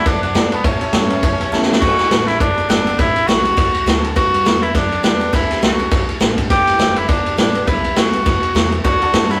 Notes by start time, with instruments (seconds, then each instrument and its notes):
0.06 upright bass F#2, steel-string acoustic guitar C3, tenor saxophone D4, honky-tonk piano D5 F#5 A5, kick, snare, ride
0.23 tenor saxophone D4, honky-tonk piano D5 F#5 A5, ride
0.34 upright bass G2, steel-string acoustic guitar B2, honky-tonk piano D5 F#5 A5, snare, ride
0.52 tenor saxophone B3, honky-tonk piano D5 F#5 A5, ride
0.64 upright bass A2, steel-string acoustic guitar A2, tenor saxophone C#4, honky-tonk piano C#5 E5 A5, kick, ride
0.81 honky-tonk piano C#5 E5 A5, muted upright bass stroke, ride
0.93 upright bass G2, steel-string acoustic guitar E3 A3 C#4 E4, honky-tonk piano C#5 E5 A5, snare, ride
1.10 honky-tonk piano C#5 E5 A5, ride
1.23 upright bass F#2, steel-string acoustic guitar B2, honky-tonk piano C#5 E5 A5, kick, ride
1.40 honky-tonk piano C#5 E5 A5, ride
1.52 upright bass E2, steel-string acoustic guitar C#3, honky-tonk piano C#5 E5 A5, snare
1.63 snare
1.69 honky-tonk piano C#5 E5 A5, snare
1.81 upright bass D2, steel-string acoustic guitar D3, tenor saxophone F#4, kick, crash
1.98 muted upright bass stroke, snare, ride
2.11 upright bass A1, steel-string acoustic guitar D3 A3 D4 F#4, snare, ride
2.27 steel-string acoustic guitar D4 F#4, tenor saxophone E4, snare, ride
2.40 upright bass F#1, steel-string acoustic guitar A2, tenor saxophone D4, kick, ride
2.58 ride
2.69 upright bass G1, steel-string acoustic guitar D3 A3 D4 F#4, tenor saxophone D4, snare, ride
2.86 steel-string acoustic guitar D4 F#4, ride
2.99 upright bass A1, steel-string acoustic guitar D3, tenor saxophone E4, kick, snare, ride
3.16 ride
3.27 upright bass B1, steel-string acoustic guitar D3 A3 D4 F#4, tenor saxophone F#4, snare, ride
3.45 steel-string acoustic guitar D4 F#4, ride
3.57 upright bass C2, steel-string acoustic guitar A2, kick, ride
3.75 ride
3.86 upright bass D2, steel-string acoustic guitar D3 A3 D4 F#4, snare, ride
4.05 ride
4.16 steel-string acoustic guitar G2, upright bass G2, tenor saxophone F#4, kick, ride
4.34 ride
4.45 upright bass E2, steel-string acoustic guitar D3 G3 B3 G4, snare, ride
4.62 tenor saxophone E4, ride
4.75 upright bass F#2, steel-string acoustic guitar D3, tenor saxophone D4, kick, snare, ride
4.92 ride
5.03 upright bass E2, steel-string acoustic guitar D3 G3 B3 G4, tenor saxophone D4, snare, ride
5.20 steel-string acoustic guitar B3 G4, ride
5.33 upright bass D2, steel-string acoustic guitar D3, tenor saxophone E4, kick, snare, ride
5.51 snare, ride
5.62 upright bass C2, steel-string acoustic guitar D3 A3 D4 F#4, tenor saxophone F#4, snare, ride
5.79 steel-string acoustic guitar D4 F#4, ride
5.91 upright bass B1, steel-string acoustic guitar A2, kick, snare, ride
6.09 ride
6.20 upright bass A1, steel-string acoustic guitar D3 A3 D4 F#4, snare, ride
6.38 steel-string acoustic guitar D4 F#4, kick, ride
6.50 upright bass G1, steel-string acoustic guitar G2, tenor saxophone G4, kick, snare, ride
6.67 snare, ride
6.79 upright bass F#1, steel-string acoustic guitar D3 G3 B3 G4, snare, ride
6.96 steel-string acoustic guitar B3 G4, tenor saxophone E4, ride
7.09 upright bass G1, steel-string acoustic guitar D3, tenor saxophone D4, kick, ride
7.26 ride
7.37 upright bass A1, steel-string acoustic guitar D3 G3 B3 G4, tenor saxophone D4, snare, ride
7.55 steel-string acoustic guitar B3 G4, ride
7.67 upright bass B1, steel-string acoustic guitar G2, tenor saxophone E4, kick, ride
7.84 ride
7.96 upright bass C2, steel-string acoustic guitar D3 G3 B3 G4, tenor saxophone F#4, snare, ride
8.13 steel-string acoustic guitar B3 G4, ride
8.26 upright bass D2, steel-string acoustic guitar B2, kick, snare, ride
8.43 ride
8.55 upright bass E2, steel-string acoustic guitar C3, snare, ride
8.72 ride
8.84 upright bass D2, steel-string acoustic guitar D3, tenor saxophone F#4, honky-tonk piano D5 F#5 A5, kick, ride
9.02 honky-tonk piano D5 F#5 A5, ride
9.13 upright bass G2, steel-string acoustic guitar D3 A3 D4 F#4, honky-tonk piano D5 A5, snare, ride
9.30 steel-string acoustic guitar D4 F#4, tenor saxophone E4, honky-tonk piano D5 F#5 A5, snare, ride